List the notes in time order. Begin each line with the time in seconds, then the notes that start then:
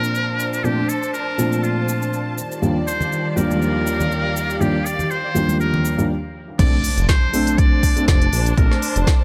Already playing: A#2 F3 A#3 C4 D4 A#4 C5 A5
0.04 cabasa
0.15 cabasa
0.40 cabasa
0.53 cabasa
0.64 A#2 F3 A3 C4 D4 G4, cabasa
0.89 A4, cabasa
1.03 cabasa
1.14 A#4, cabasa
1.38 A#2 F3 A3 C4 D4, cabasa
1.53 cabasa
1.63 F4, cabasa
1.89 cabasa
2.02 cabasa
2.13 cabasa
2.38 D#3 G3 F4 D5, cabasa
2.52 cabasa
2.58 D5
2.62 D#2 F3 G3 A#3 D4, cabasa
2.76 G4
2.87 C5, cabasa
3.01 low conga, cabasa
3.13 cabasa
3.31 C5
3.36 D#2 F3 G3 A#3 D4 A#4 F5, cabasa
3.51 high conga, cabasa
3.62 cabasa
3.87 cabasa
4.00 low conga, cabasa
4.12 cabasa
4.36 G4, cabasa
4.50 cabasa
4.61 D#2 F3 G3 A#3 D4 G4, cabasa
4.86 D5, cabasa
4.99 low conga, cabasa
5.10 C5, cabasa
5.35 D#2 F3 G3 A#3 D4, cabasa
5.49 high conga, cabasa
5.60 A#4, cabasa
5.74 low conga
5.85 cabasa
5.98 D#2 F3 G3 A#3 D4, cabasa
6.59 A#1 A3 C4 D4 C5 D5 A5, kick, closed hi-hat, crash, impact, cabasa
6.84 open hi-hat, cabasa
6.98 F1 A5, closed hi-hat, cabasa
7.09 C5, kick, snare, closed hi-hat, cabasa
7.33 A3 C4 D4, open hi-hat, cabasa
7.44 C5, closed hi-hat, cabasa
7.58 D5, kick, closed hi-hat, cabasa
7.83 kick, open hi-hat, cabasa
7.97 A3 C4 D4, closed hi-hat, cabasa
8.08 F1 D5, kick, snare, closed hi-hat, cabasa
8.22 closed hi-hat
8.33 A#1, open hi-hat, cabasa
8.46 closed hi-hat, cabasa
8.57 A#1 A3 C4 D4 A#4 D5, kick, closed hi-hat, cabasa
8.72 snare
8.82 open hi-hat, cabasa
8.96 F1, closed hi-hat, cabasa
9.07 kick, snare, closed hi-hat, cabasa